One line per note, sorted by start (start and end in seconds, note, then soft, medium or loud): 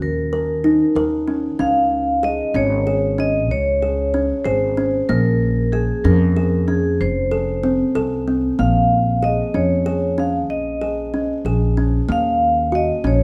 0.01 0.81 D#2 medium
0.01 0.93 A#4 medium
0.33 0.52 A#4 medium
0.64 0.84 D#4 medium
0.95 1.49 D#2 medium
0.95 1.16 A#4 medium
1.28 1.47 C#4 medium
1.59 2.40 C#2 medium
1.59 1.98 C#4 medium
1.59 2.26 F5 medium
2.23 2.43 G#4 medium
2.23 2.57 D#5 medium
2.54 3.50 G#1 medium
2.54 2.75 C#4 medium
2.54 3.21 C#5 medium
2.87 3.06 G#4 medium
3.18 3.57 C#4 medium
3.18 3.52 D#5 medium
3.50 4.31 C#2 medium
3.50 4.42 C#5 medium
3.82 4.02 G#4 medium
4.14 4.34 C#4 medium
4.45 4.99 G#1 medium
4.45 4.65 G#4 medium
4.45 5.11 C5 medium
4.77 4.97 C#4 medium
5.09 5.90 A#1 medium
5.09 5.48 A#3 medium
5.09 5.75 A#4 medium
5.72 6.06 G#4 medium
5.72 5.93 G#4 medium
6.04 7.02 F2 medium
6.04 6.24 C#4 medium
6.04 6.70 A#4 medium
6.37 6.56 G#4 medium
6.68 7.07 C#4 medium
6.68 7.01 G#4 medium
7.01 7.81 F1 medium
7.01 7.92 C5 medium
7.31 7.51 A4 medium
7.63 7.83 C4 medium
7.95 8.49 C2 medium
7.95 8.15 A4 medium
8.28 8.47 C4 medium
8.59 9.40 A#1 medium
8.59 8.98 A#3 medium
8.59 9.25 F5 medium
9.23 9.42 G#4 medium
9.23 9.56 D#5 medium
9.54 10.50 F2 medium
9.54 9.74 C#4 medium
9.54 10.20 C#5 medium
9.86 10.06 G#4 medium
10.18 10.57 C#4 medium
10.18 10.34 F5 medium
10.50 11.30 A#1 medium
10.50 11.42 D#5 medium
10.82 11.01 G#4 medium
11.14 11.33 C#4 medium
11.45 11.99 A#1 medium
11.45 11.65 G#4 medium
11.77 11.97 C#4 medium
12.09 12.90 D#2 medium
12.09 12.48 A#3 medium
12.09 12.76 F5 medium
12.72 12.92 F#4 medium
12.72 13.07 D#5 medium
13.04 13.23 A#1 medium
13.04 13.23 C#4 medium
13.04 13.23 C#5 medium